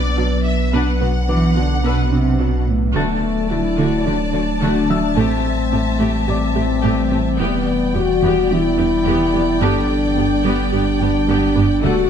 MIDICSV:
0, 0, Header, 1, 10, 480
1, 0, Start_track
1, 0, Tempo, 555556
1, 628, Time_signature, 4, 2, 24, 8
1, 10454, End_track
2, 0, Start_track
2, 0, Title_t, "Grand piano"
2, 0, Program_c, 0, 0
2, 0, Control_c, 0, 64, 127
2, 0, Note_on_c, 0, 88, 49
2, 834, Note_off_c, 0, 88, 0
2, 1117, Note_on_c, 0, 86, 35
2, 1604, Note_on_c, 0, 88, 27
2, 2518, Note_off_c, 0, 86, 0
2, 2521, Note_off_c, 0, 88, 0
2, 2558, Note_on_c, 0, 81, 31
2, 2559, Note_on_c, 0, 93, 40
2, 2566, Control_c, 0, 64, 0
2, 2703, Control_c, 0, 64, 127
2, 3959, Note_off_c, 0, 81, 0
2, 3959, Note_off_c, 0, 93, 0
2, 4232, Note_on_c, 0, 76, 34
2, 4239, Note_on_c, 0, 88, 47
2, 4485, Control_c, 0, 64, 0
2, 4612, Control_c, 0, 64, 127
2, 5438, Note_on_c, 0, 74, 30
2, 5439, Note_on_c, 0, 86, 33
2, 5636, Note_off_c, 0, 76, 0
2, 5639, Note_off_c, 0, 88, 0
2, 6406, Control_c, 0, 64, 0
2, 6556, Control_c, 0, 64, 127
2, 6839, Note_off_c, 0, 74, 0
2, 6839, Note_off_c, 0, 86, 0
2, 8318, Note_on_c, 0, 81, 38
2, 8321, Note_on_c, 0, 69, 32
2, 8325, Control_c, 0, 64, 0
2, 8460, Control_c, 0, 64, 127
2, 9719, Note_off_c, 0, 81, 0
2, 9720, Note_off_c, 0, 69, 0
2, 10243, Control_c, 0, 64, 0
2, 10403, Control_c, 0, 64, 127
2, 10454, End_track
3, 0, Start_track
3, 0, Title_t, "Violin section"
3, 0, Program_c, 1, 48
3, 2546, Note_on_c, 1, 81, 53
3, 2551, Note_on_c, 1, 74, 52
3, 4435, Note_off_c, 1, 74, 0
3, 4471, Note_on_c, 1, 76, 50
3, 6353, Note_off_c, 1, 81, 0
3, 6355, Note_off_c, 1, 76, 0
3, 6379, Note_on_c, 1, 74, 55
3, 6379, Note_on_c, 1, 79, 54
3, 10189, Note_off_c, 1, 74, 0
3, 10189, Note_off_c, 1, 79, 0
3, 10229, Note_on_c, 1, 78, 60
3, 10231, Note_on_c, 1, 74, 59
3, 10454, Note_off_c, 1, 74, 0
3, 10454, Note_off_c, 1, 78, 0
3, 10454, End_track
4, 0, Start_track
4, 0, Title_t, "Violin section"
4, 0, Program_c, 2, 48
4, 0, Note_on_c, 2, 74, 78
4, 387, Note_on_c, 2, 76, 60
4, 391, Note_off_c, 2, 74, 0
4, 623, Note_off_c, 2, 76, 0
4, 627, Note_on_c, 2, 78, 59
4, 2308, Note_off_c, 2, 78, 0
4, 10454, End_track
5, 0, Start_track
5, 0, Title_t, "French horn section"
5, 0, Program_c, 3, 60
5, 2559, Note_on_c, 3, 57, 59
5, 3000, Note_off_c, 3, 57, 0
5, 3030, Note_on_c, 3, 64, 62
5, 3500, Note_off_c, 3, 64, 0
5, 3510, Note_on_c, 3, 62, 55
5, 4469, Note_off_c, 3, 62, 0
5, 4478, Note_on_c, 3, 60, 65
5, 5428, Note_off_c, 3, 60, 0
5, 5439, Note_on_c, 3, 60, 67
5, 6374, Note_off_c, 3, 60, 0
5, 6386, Note_on_c, 3, 59, 65
5, 6867, Note_off_c, 3, 59, 0
5, 6872, Note_on_c, 3, 66, 72
5, 7350, Note_off_c, 3, 66, 0
5, 7362, Note_on_c, 3, 64, 62
5, 8311, Note_on_c, 3, 62, 74
5, 8315, Note_off_c, 3, 64, 0
5, 9124, Note_off_c, 3, 62, 0
5, 9271, Note_on_c, 3, 62, 72
5, 10211, Note_off_c, 3, 62, 0
5, 10224, Note_on_c, 3, 66, 77
5, 10454, Note_off_c, 3, 66, 0
5, 10454, End_track
6, 0, Start_track
6, 0, Title_t, "Viola section"
6, 0, Program_c, 4, 48
6, 146, Note_on_c, 4, 54, 52
6, 147, Note_on_c, 4, 62, 42
6, 215, Note_off_c, 4, 54, 0
6, 216, Note_off_c, 4, 62, 0
6, 632, Note_on_c, 4, 62, 55
6, 634, Note_on_c, 4, 71, 50
6, 853, Note_off_c, 4, 62, 0
6, 855, Note_off_c, 4, 71, 0
6, 869, Note_on_c, 4, 59, 35
6, 871, Note_on_c, 4, 66, 31
6, 938, Note_off_c, 4, 59, 0
6, 940, Note_off_c, 4, 66, 0
6, 1108, Note_on_c, 4, 54, 30
6, 1109, Note_on_c, 4, 62, 32
6, 1178, Note_off_c, 4, 54, 0
6, 1178, Note_off_c, 4, 62, 0
6, 1346, Note_on_c, 4, 66, 30
6, 1347, Note_on_c, 4, 59, 28
6, 1415, Note_off_c, 4, 66, 0
6, 1416, Note_off_c, 4, 59, 0
6, 1588, Note_on_c, 4, 71, 48
6, 1589, Note_on_c, 4, 62, 40
6, 1811, Note_off_c, 4, 71, 0
6, 1812, Note_off_c, 4, 62, 0
6, 1825, Note_on_c, 4, 66, 34
6, 1826, Note_on_c, 4, 59, 29
6, 1894, Note_off_c, 4, 66, 0
6, 1895, Note_off_c, 4, 59, 0
6, 2067, Note_on_c, 4, 54, 38
6, 2067, Note_on_c, 4, 62, 35
6, 2136, Note_off_c, 4, 54, 0
6, 2136, Note_off_c, 4, 62, 0
6, 2544, Note_on_c, 4, 57, 52
6, 2546, Note_on_c, 4, 66, 60
6, 2769, Note_off_c, 4, 57, 0
6, 2770, Note_off_c, 4, 66, 0
6, 3023, Note_on_c, 4, 66, 40
6, 3024, Note_on_c, 4, 57, 39
6, 3092, Note_off_c, 4, 66, 0
6, 3093, Note_off_c, 4, 57, 0
6, 3262, Note_on_c, 4, 57, 40
6, 3265, Note_on_c, 4, 66, 48
6, 3488, Note_off_c, 4, 57, 0
6, 3490, Note_off_c, 4, 66, 0
6, 3506, Note_on_c, 4, 57, 39
6, 3509, Note_on_c, 4, 66, 36
6, 3575, Note_off_c, 4, 57, 0
6, 3578, Note_off_c, 4, 66, 0
6, 3746, Note_on_c, 4, 66, 44
6, 3747, Note_on_c, 4, 57, 42
6, 3815, Note_off_c, 4, 66, 0
6, 3816, Note_off_c, 4, 57, 0
6, 3983, Note_on_c, 4, 57, 60
6, 3985, Note_on_c, 4, 66, 61
6, 4209, Note_off_c, 4, 57, 0
6, 4210, Note_off_c, 4, 66, 0
6, 4224, Note_on_c, 4, 66, 43
6, 4225, Note_on_c, 4, 57, 41
6, 4293, Note_off_c, 4, 66, 0
6, 4294, Note_off_c, 4, 57, 0
6, 4460, Note_on_c, 4, 57, 50
6, 4461, Note_on_c, 4, 67, 51
6, 4687, Note_off_c, 4, 57, 0
6, 4688, Note_off_c, 4, 67, 0
6, 4942, Note_on_c, 4, 57, 38
6, 4943, Note_on_c, 4, 67, 33
6, 5011, Note_off_c, 4, 57, 0
6, 5012, Note_off_c, 4, 67, 0
6, 5175, Note_on_c, 4, 67, 45
6, 5176, Note_on_c, 4, 57, 45
6, 5404, Note_off_c, 4, 67, 0
6, 5405, Note_off_c, 4, 57, 0
6, 5419, Note_on_c, 4, 67, 40
6, 5420, Note_on_c, 4, 57, 38
6, 5488, Note_off_c, 4, 67, 0
6, 5489, Note_off_c, 4, 57, 0
6, 5658, Note_on_c, 4, 57, 43
6, 5658, Note_on_c, 4, 67, 44
6, 5727, Note_off_c, 4, 57, 0
6, 5727, Note_off_c, 4, 67, 0
6, 5900, Note_on_c, 4, 57, 58
6, 5903, Note_on_c, 4, 67, 57
6, 6127, Note_off_c, 4, 57, 0
6, 6129, Note_off_c, 4, 67, 0
6, 6139, Note_on_c, 4, 67, 43
6, 6140, Note_on_c, 4, 57, 46
6, 6208, Note_off_c, 4, 67, 0
6, 6209, Note_off_c, 4, 57, 0
6, 6381, Note_on_c, 4, 67, 55
6, 6385, Note_on_c, 4, 59, 62
6, 6608, Note_off_c, 4, 67, 0
6, 6610, Note_off_c, 4, 59, 0
6, 6864, Note_on_c, 4, 59, 42
6, 6864, Note_on_c, 4, 67, 44
6, 6933, Note_off_c, 4, 59, 0
6, 6933, Note_off_c, 4, 67, 0
6, 7107, Note_on_c, 4, 59, 44
6, 7107, Note_on_c, 4, 67, 47
6, 7331, Note_off_c, 4, 59, 0
6, 7331, Note_off_c, 4, 67, 0
6, 7346, Note_on_c, 4, 59, 40
6, 7347, Note_on_c, 4, 67, 39
6, 7415, Note_off_c, 4, 59, 0
6, 7416, Note_off_c, 4, 67, 0
6, 7585, Note_on_c, 4, 59, 48
6, 7586, Note_on_c, 4, 67, 41
6, 7654, Note_off_c, 4, 59, 0
6, 7655, Note_off_c, 4, 67, 0
6, 7820, Note_on_c, 4, 59, 61
6, 7821, Note_on_c, 4, 67, 57
6, 8047, Note_off_c, 4, 59, 0
6, 8048, Note_off_c, 4, 67, 0
6, 8063, Note_on_c, 4, 59, 47
6, 8064, Note_on_c, 4, 67, 44
6, 8132, Note_off_c, 4, 59, 0
6, 8133, Note_off_c, 4, 67, 0
6, 8307, Note_on_c, 4, 59, 70
6, 8308, Note_on_c, 4, 67, 68
6, 8531, Note_off_c, 4, 59, 0
6, 8531, Note_off_c, 4, 67, 0
6, 8787, Note_on_c, 4, 59, 35
6, 8789, Note_on_c, 4, 67, 40
6, 8856, Note_off_c, 4, 59, 0
6, 8858, Note_off_c, 4, 67, 0
6, 9024, Note_on_c, 4, 67, 51
6, 9025, Note_on_c, 4, 59, 62
6, 9249, Note_off_c, 4, 67, 0
6, 9250, Note_off_c, 4, 59, 0
6, 9270, Note_on_c, 4, 59, 50
6, 9272, Note_on_c, 4, 67, 41
6, 9339, Note_off_c, 4, 59, 0
6, 9341, Note_off_c, 4, 67, 0
6, 9510, Note_on_c, 4, 59, 47
6, 9511, Note_on_c, 4, 67, 51
6, 9579, Note_off_c, 4, 59, 0
6, 9580, Note_off_c, 4, 67, 0
6, 9744, Note_on_c, 4, 59, 60
6, 9744, Note_on_c, 4, 67, 65
6, 9969, Note_off_c, 4, 59, 0
6, 9969, Note_off_c, 4, 67, 0
6, 9987, Note_on_c, 4, 59, 53
6, 9988, Note_on_c, 4, 67, 55
6, 10056, Note_off_c, 4, 59, 0
6, 10057, Note_off_c, 4, 67, 0
6, 10226, Note_on_c, 4, 69, 59
6, 10227, Note_on_c, 4, 57, 64
6, 10450, Note_off_c, 4, 69, 0
6, 10451, Note_off_c, 4, 57, 0
6, 10454, End_track
7, 0, Start_track
7, 0, Title_t, "Analog synth pad"
7, 0, Program_c, 5, 89
7, 0, Note_on_c, 5, 54, 61
7, 0, Note_on_c, 5, 59, 68
7, 0, Note_on_c, 5, 62, 65
7, 0, Note_on_c, 5, 71, 59
7, 2509, Note_off_c, 5, 59, 0
7, 2509, Note_off_c, 5, 71, 0
7, 2536, Note_off_c, 5, 54, 0
7, 2539, Note_off_c, 5, 62, 0
7, 2546, Note_on_c, 5, 54, 63
7, 2549, Note_on_c, 5, 57, 60
7, 2550, Note_on_c, 5, 62, 53
7, 2553, Note_on_c, 5, 74, 56
7, 4433, Note_off_c, 5, 54, 0
7, 4434, Note_off_c, 5, 62, 0
7, 4436, Note_off_c, 5, 74, 0
7, 4465, Note_on_c, 5, 55, 60
7, 4467, Note_on_c, 5, 76, 61
7, 4468, Note_on_c, 5, 52, 58
7, 6354, Note_off_c, 5, 57, 0
7, 6382, Note_on_c, 5, 74, 59
7, 6384, Note_on_c, 5, 59, 61
7, 6387, Note_off_c, 5, 76, 0
7, 8301, Note_off_c, 5, 55, 0
7, 8308, Note_off_c, 5, 52, 0
7, 8311, Note_on_c, 5, 55, 58
7, 8315, Note_on_c, 5, 67, 63
7, 10197, Note_off_c, 5, 67, 0
7, 10210, Note_off_c, 5, 74, 0
7, 10217, Note_on_c, 5, 54, 62
7, 10218, Note_on_c, 5, 57, 56
7, 10220, Note_on_c, 5, 74, 58
7, 10223, Note_on_c, 5, 69, 62
7, 10226, Note_off_c, 5, 59, 0
7, 10230, Note_off_c, 5, 55, 0
7, 10454, Note_off_c, 5, 54, 0
7, 10454, Note_off_c, 5, 57, 0
7, 10454, Note_off_c, 5, 69, 0
7, 10454, Note_off_c, 5, 74, 0
7, 10454, End_track
8, 0, Start_track
8, 0, Title_t, "Synth arpeggio sound"
8, 0, Program_c, 6, 84
8, 154, Note_on_c, 6, 66, 53
8, 296, Note_off_c, 6, 66, 0
8, 633, Note_on_c, 6, 59, 67
8, 776, Note_off_c, 6, 59, 0
8, 875, Note_on_c, 6, 71, 53
8, 1017, Note_off_c, 6, 71, 0
8, 1113, Note_on_c, 6, 71, 53
8, 1255, Note_off_c, 6, 71, 0
8, 1355, Note_on_c, 6, 66, 49
8, 1497, Note_off_c, 6, 66, 0
8, 1591, Note_on_c, 6, 59, 68
8, 1734, Note_off_c, 6, 59, 0
8, 1833, Note_on_c, 6, 62, 51
8, 1976, Note_off_c, 6, 62, 0
8, 2073, Note_on_c, 6, 66, 56
8, 2216, Note_off_c, 6, 66, 0
8, 2552, Note_on_c, 6, 50, 63
8, 2695, Note_off_c, 6, 50, 0
8, 3031, Note_on_c, 6, 54, 51
8, 3174, Note_off_c, 6, 54, 0
8, 3272, Note_on_c, 6, 50, 73
8, 3415, Note_off_c, 6, 50, 0
8, 3514, Note_on_c, 6, 62, 51
8, 3656, Note_off_c, 6, 62, 0
8, 3752, Note_on_c, 6, 62, 57
8, 3895, Note_off_c, 6, 62, 0
8, 3991, Note_on_c, 6, 50, 78
8, 4134, Note_off_c, 6, 50, 0
8, 4233, Note_on_c, 6, 54, 58
8, 4375, Note_off_c, 6, 54, 0
8, 4468, Note_on_c, 6, 57, 70
8, 4612, Note_off_c, 6, 57, 0
8, 4946, Note_on_c, 6, 60, 53
8, 5091, Note_off_c, 6, 60, 0
8, 5189, Note_on_c, 6, 57, 72
8, 5333, Note_off_c, 6, 57, 0
8, 5424, Note_on_c, 6, 67, 52
8, 5569, Note_off_c, 6, 67, 0
8, 5666, Note_on_c, 6, 67, 58
8, 5811, Note_off_c, 6, 67, 0
8, 5908, Note_on_c, 6, 57, 71
8, 6052, Note_off_c, 6, 57, 0
8, 6150, Note_on_c, 6, 60, 53
8, 6294, Note_off_c, 6, 60, 0
8, 6392, Note_on_c, 6, 52, 69
8, 6535, Note_off_c, 6, 52, 0
8, 6870, Note_on_c, 6, 55, 51
8, 7014, Note_off_c, 6, 55, 0
8, 7108, Note_on_c, 6, 52, 71
8, 7252, Note_off_c, 6, 52, 0
8, 7350, Note_on_c, 6, 62, 53
8, 7493, Note_off_c, 6, 62, 0
8, 7589, Note_on_c, 6, 62, 51
8, 7733, Note_off_c, 6, 62, 0
8, 7826, Note_on_c, 6, 52, 78
8, 7971, Note_off_c, 6, 52, 0
8, 8065, Note_on_c, 6, 55, 59
8, 8210, Note_off_c, 6, 55, 0
8, 8305, Note_on_c, 6, 55, 74
8, 8450, Note_off_c, 6, 55, 0
8, 8785, Note_on_c, 6, 59, 59
8, 8930, Note_off_c, 6, 59, 0
8, 9025, Note_on_c, 6, 55, 69
8, 9170, Note_off_c, 6, 55, 0
8, 9265, Note_on_c, 6, 67, 55
8, 9410, Note_off_c, 6, 67, 0
8, 9504, Note_on_c, 6, 67, 55
8, 9649, Note_off_c, 6, 67, 0
8, 9744, Note_on_c, 6, 55, 82
8, 9889, Note_off_c, 6, 55, 0
8, 9983, Note_on_c, 6, 59, 55
8, 10129, Note_off_c, 6, 59, 0
8, 10226, Note_on_c, 6, 50, 77
8, 10371, Note_off_c, 6, 50, 0
8, 10454, End_track
9, 0, Start_track
9, 0, Title_t, "Cello section"
9, 0, Program_c, 7, 48
9, 156, Note_on_c, 7, 47, 43
9, 225, Note_off_c, 7, 47, 0
9, 637, Note_on_c, 7, 47, 49
9, 706, Note_off_c, 7, 47, 0
9, 878, Note_on_c, 7, 47, 37
9, 947, Note_off_c, 7, 47, 0
9, 1117, Note_on_c, 7, 52, 52
9, 1336, Note_off_c, 7, 52, 0
9, 1356, Note_on_c, 7, 50, 42
9, 1592, Note_off_c, 7, 50, 0
9, 1593, Note_on_c, 7, 47, 45
9, 1826, Note_off_c, 7, 47, 0
9, 1836, Note_on_c, 7, 48, 42
9, 2067, Note_off_c, 7, 48, 0
9, 2075, Note_on_c, 7, 47, 45
9, 2310, Note_on_c, 7, 45, 40
9, 2312, Note_off_c, 7, 47, 0
9, 2549, Note_off_c, 7, 45, 0
9, 2551, Note_on_c, 7, 50, 55
9, 2620, Note_off_c, 7, 50, 0
9, 3031, Note_on_c, 7, 50, 36
9, 3101, Note_off_c, 7, 50, 0
9, 3266, Note_on_c, 7, 50, 55
9, 3335, Note_off_c, 7, 50, 0
9, 3507, Note_on_c, 7, 50, 39
9, 3576, Note_off_c, 7, 50, 0
9, 3745, Note_on_c, 7, 50, 41
9, 3814, Note_off_c, 7, 50, 0
9, 3985, Note_on_c, 7, 50, 54
9, 4054, Note_off_c, 7, 50, 0
9, 4229, Note_on_c, 7, 50, 43
9, 4298, Note_off_c, 7, 50, 0
9, 4465, Note_on_c, 7, 45, 58
9, 4534, Note_off_c, 7, 45, 0
9, 4947, Note_on_c, 7, 45, 39
9, 5016, Note_off_c, 7, 45, 0
9, 5189, Note_on_c, 7, 45, 59
9, 5258, Note_off_c, 7, 45, 0
9, 5426, Note_on_c, 7, 45, 40
9, 5495, Note_off_c, 7, 45, 0
9, 5667, Note_on_c, 7, 45, 46
9, 5737, Note_off_c, 7, 45, 0
9, 5912, Note_on_c, 7, 45, 57
9, 5981, Note_off_c, 7, 45, 0
9, 6150, Note_on_c, 7, 45, 41
9, 6219, Note_off_c, 7, 45, 0
9, 6390, Note_on_c, 7, 40, 54
9, 6460, Note_off_c, 7, 40, 0
9, 6869, Note_on_c, 7, 40, 37
9, 6938, Note_off_c, 7, 40, 0
9, 7106, Note_on_c, 7, 40, 61
9, 7175, Note_off_c, 7, 40, 0
9, 7348, Note_on_c, 7, 40, 41
9, 7417, Note_off_c, 7, 40, 0
9, 7586, Note_on_c, 7, 40, 45
9, 7655, Note_off_c, 7, 40, 0
9, 7826, Note_on_c, 7, 40, 63
9, 7895, Note_off_c, 7, 40, 0
9, 8064, Note_on_c, 7, 40, 47
9, 8133, Note_off_c, 7, 40, 0
9, 8306, Note_on_c, 7, 43, 62
9, 8375, Note_off_c, 7, 43, 0
9, 8789, Note_on_c, 7, 43, 42
9, 8858, Note_off_c, 7, 43, 0
9, 9027, Note_on_c, 7, 43, 58
9, 9096, Note_off_c, 7, 43, 0
9, 9268, Note_on_c, 7, 43, 46
9, 9337, Note_off_c, 7, 43, 0
9, 9509, Note_on_c, 7, 43, 44
9, 9578, Note_off_c, 7, 43, 0
9, 9745, Note_on_c, 7, 43, 70
9, 9814, Note_off_c, 7, 43, 0
9, 9988, Note_on_c, 7, 43, 51
9, 10058, Note_off_c, 7, 43, 0
9, 10226, Note_on_c, 7, 38, 67
9, 10295, Note_off_c, 7, 38, 0
9, 10454, End_track
10, 0, Start_track
10, 0, Title_t, "Sub bass"
10, 0, Program_c, 8, 38
10, 0, Note_on_c, 8, 35, 67
10, 2545, Note_off_c, 8, 35, 0
10, 2550, Note_on_c, 8, 26, 60
10, 4470, Note_on_c, 8, 33, 63
10, 4483, Note_off_c, 8, 26, 0
10, 6382, Note_on_c, 8, 28, 61
10, 6395, Note_off_c, 8, 33, 0
10, 8306, Note_on_c, 8, 31, 61
10, 8319, Note_off_c, 8, 28, 0
10, 10230, Note_on_c, 8, 26, 70
10, 10243, Note_off_c, 8, 31, 0
10, 10454, Note_off_c, 8, 26, 0
10, 10454, End_track
0, 0, End_of_file